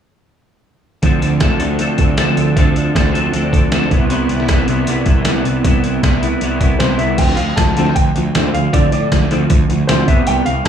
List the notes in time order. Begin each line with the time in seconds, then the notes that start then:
1.03 D2 D3 F3 C4 D4 A4, kick, closed hi-hat
1.22 D2 C4 D4 A4, closed hi-hat
1.40 D2 F3 C4 D4 A4, kick, snare, closed hi-hat
1.59 D2 D3 F3 C4 D4 A4, closed hi-hat
1.79 D2 F3 C4 D4 A4, closed hi-hat
1.98 D2 C4 D4 A4, kick, closed hi-hat
2.17 D2 D3 F3 C4 D4 A4, snare, closed hi-hat
2.37 D2 C4 D4 A4, closed hi-hat
2.56 D2 D3 F3 C4 D4 A4, kick, closed hi-hat
2.75 C4 D4 A4, closed hi-hat
2.95 D2 F3 C4 D4 A4, kick, snare, closed hi-hat
3.14 D3 F3 C4 D4 A4, closed hi-hat
3.33 D2 F3 C4 D4 A4, closed hi-hat
3.52 C4 D4 A4, kick, closed hi-hat
3.72 D2 D3 F3 C4 D4 A4, snare, closed hi-hat
3.91 C2 C3 G3 B3 E4, kick, closed hi-hat
4.09 C2 C3 G3 B3 E4, closed hi-hat
4.29 C2 G3 B3 E4, closed hi-hat
4.40 snare
4.48 C2 C3 G3 B3 E4, kick, snare, closed hi-hat
4.67 C2 C3 G3 B3 E4, closed hi-hat
4.87 C2 C3 G3 B3 E4, closed hi-hat
5.06 C2 G3 B3 E4, kick, closed hi-hat
5.25 C2 C3 G3 B3 E4, snare, closed hi-hat
5.44 C2 G3 B3 E4, closed hi-hat
5.64 C2 C3 G3 B3 E4, kick, closed hi-hat
5.83 G3 B3 E4, closed hi-hat
6.03 C2 C3 G3 B3 E4, kick, snare, closed hi-hat
6.22 C3 G3 B3 E4, closed hi-hat
6.41 C2 C3 G3 B3 E4, closed hi-hat
6.61 G3 B3 E4, kick, closed hi-hat
6.79 C2 C3 G3 C5, snare, closed hi-hat
6.83 B3 E4
6.98 C2 B3 E4 E5, closed hi-hat
7.03 G3
7.18 D2 D3 F3 C4 G5, kick, closed hi-hat, crash
7.36 D2 D3 F3 F5, closed hi-hat
7.56 D2 D3 F3 A5, kick, snare, closed hi-hat
7.75 D2 D3 A5, closed hi-hat
7.79 F3 C4
7.86 snare
7.95 D2 D3 F3 G5, kick, closed hi-hat
8.16 D2 D3 F3, closed hi-hat
8.35 D2 D3 F3 C4, snare, closed hi-hat
8.54 D2 D3 F3 F5, closed hi-hat
8.73 D2 D3 F3 C4 D5, kick, closed hi-hat
8.92 A2 D3 F3 D5, closed hi-hat
9.12 D2 D3 F3, kick, snare, closed hi-hat
9.31 D2 D3 F3 C4, closed hi-hat
9.50 D2 D3 F3, kick, closed hi-hat
9.69 D2 D3 F3, closed hi-hat
9.87 D2 D3 F3 C4 C5, snare, closed hi-hat
10.08 C2 C3 G3 B3 E5, kick, closed hi-hat
10.27 C2 C3 G3 B3 G5, closed hi-hat
10.46 C2 C3 G3 F5, closed hi-hat
10.65 A5